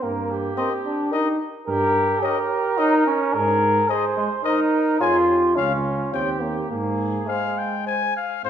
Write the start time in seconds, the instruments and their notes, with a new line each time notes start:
0.03 tuba G2, trombone A#3, flugelhorn A#4
0.31 flugelhorn G4
0.57 trombone C4, french horn A#4, trumpet D#5
0.85 trombone D4
1.12 trombone D#4, french horn A#4, trumpet D#5
1.67 tuba G2, flugelhorn G4, trombone A#4
2.22 trombone G4, flugelhorn A#4, french horn C#5, trumpet D#5
2.78 trombone D#4, french horn C#5, trumpet D#5
3.07 trombone C#4
3.34 tuba G#2, flugelhorn G#4, trombone A#4
3.89 trombone G#4, flugelhorn C5, french horn C5, trumpet D#5
4.17 trombone G#3
4.44 trombone D#4, flugelhorn A#4, french horn C5, trumpet D#5
5.00 tuba F2, trombone F4, flugelhorn G#4, french horn C#5, trumpet G#5
5.28 flugelhorn G4
5.56 tuba C#2, trombone C#4, flugelhorn F4, french horn C#5, trumpet F5
6.12 tuba D#2, trombone C4, flugelhorn G4, french horn C#5, trumpet G5
6.42 trombone A#3
6.71 tuba G#2, trombone A#3, flugelhorn G#4
7.28 trombone G#3, french horn C5, trumpet F5
7.59 trumpet G5
7.86 french horn C5, trumpet G#5
8.16 trumpet F5
8.44 tuba G#2, french horn G#3, trombone C4, flugelhorn D#4, trumpet C5